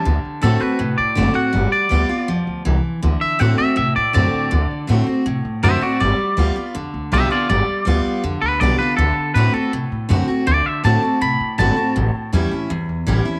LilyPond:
<<
  \new Staff \with { instrumentName = "Clean electric guitar" } { \time 4/4 \key d \mixolydian \tempo 4 = 161 r4 a'8 b'4 d''4 fis''8~ | fis''8 d''2 r4. | r8 e''8 fis''8 e''8 e''8 d''8 d''4~ | d''4 r2 <c'' e''>8 <fis' d''>8 |
d''2 r4 <g' e''>8 <f' d''>8 | d''2 r8 b'8 d''8 b'8 | a'4 b'8 a'8 r2 | d''8 e''8 a''4 b''4 a''4~ |
a''4 r2. | }
  \new Staff \with { instrumentName = "Steel-string acoustic guitar" } { \time 4/4 \key d \mixolydian << { r4 <d a c' fis'>8 <c' fis'>8 r4 <d a c' fis'>8 <c' fis'>8 | r4 <g b f'>8 <b f'>8 r2 | r4 <d a c' fis'>8 <c' fis'>8 r4 <d a c' fis'>4 | r4 <d a c' fis'>8 <c' fis'>8 r4 <d a c' fis'>8 <c' fis'>8 |
r4 <g b f'>8 <b f'>8 r4 <g b f'>8 <b f'>8 | r4 <g b f'>4 r4 <g b f'>8 <b f'>8 | r4 <d a c' fis'>8 <c' fis'>8 r4 <d a c' fis'>8 <c' fis'>8 | r4 <d a c' fis'>8 <c' fis'>8 r4 <d a c' fis'>8 <c' fis'>8 |
r4 <e g cis' e'>8 <cis' e'>8 r4 <e g cis' e'>8 <cis' e'>8 | } \\ { d2 a,2 | g2 f4 e4 | d2 a,2 | d2 a,2 |
g2 d2 | g2 d2 | d2 a,2 | d2 a,2 |
a,2 e,2 | } >> }
  \new Staff \with { instrumentName = "Upright bass" } { \clef bass \time 4/4 \key d \mixolydian d,8 r8 a,8 r8 c8 a,8 fis,,8 r8 | g,,8 r8 d,8 r8 f,8 d,8 c,8 r8 | d,8 r8 a,8 r8 c8 a,8 fis,8 r8 | d,8 r8 a,8 r8 c8 a,8 fis,8 r8 |
g,,8 r8 d,8 r8 f,8 d,8 b,,8 r8 | g,,8 r8 d,8 r8 f,8 d,8 b,,8 r8 | d,8 r8 a,8 r8 c8 a,8 fis,8 r8 | d,8 r8 a,8 r8 c8 a,8 g,,8 r8 |
a,,8 r8 e,8 r8 g,8 e,8 a,,8 r8 | }
>>